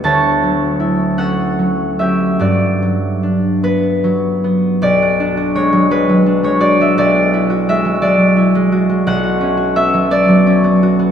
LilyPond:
<<
  \new Staff \with { instrumentName = "Harp" } { \time 6/8 \key b \minor \tempo 4. = 56 << { <e'' a''>4. fis''4 e''8 | d''4. b'4. | d''4 cis''8 b'8. cis''16 d''16 e''16 | d''4 e''8 d''4. |
fis''4 e''8 d''4. | } \\ { <cis'' d''>4. a'4 g'8 | fis'2.~ | fis'2.~ | fis'2. |
r2. | } >> }
  \new Staff \with { instrumentName = "Harp" } { \time 6/8 \key b \minor <d, e'>8 fis8 e'8 cis'8 fis8 cis'8 | g,8 fis8 d'8 b8 fis8 b8 | b,,16 fis'16 d'16 fis'16 gis16 fis16 gis16 fis16 d'16 gis16 fis'16 gis16 | b,,16 fis'16 e'16 fis'16 gis16 fis16 gis16 fis16 e'16 gis16 fis'16 gis16 |
b,,16 fis'16 cis'16 fis'16 b16 fis16 b16 fis16 cis'16 b16 fis'16 b16 | }
>>